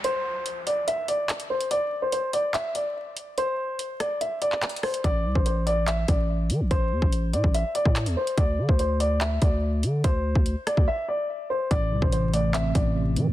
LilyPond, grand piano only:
\new Staff \with { instrumentName = "Grand piano" } { \time 4/4 \key a \minor \tempo 4 = 144 c''4. d''8 e''8 d''4 c''8 | d''8. c''16 c''8 d''8 e''8 d''4. | c''4. d''8 e''8 d''4 c''8 | d''8. c''16 c''8 d''8 e''8 d''4. |
c''4. d''8 e''8 d''4 c''8 | d''8. c''16 c''8 d''8 e''8 d''4. | c''4. d''8 e''8 d''4 c''8 | d''8. c''16 c''8 d''8 e''8 d''4. | }